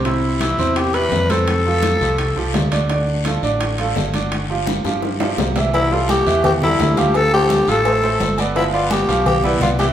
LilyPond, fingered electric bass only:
\new Staff \with { instrumentName = "Fingered electric bass" } { \clef bass \time 4/4 \key c \major \tempo 4 = 169 c,4. e,4. f,4~ | f,4. c,4 c,8 d,4~ | d,4. a,,4. g,,4~ | g,,4. g,4. c,4~ |
c,4. e,4. d,4~ | d,4. a,,4. g,,4~ | g,,4. b,,4. c,4 | }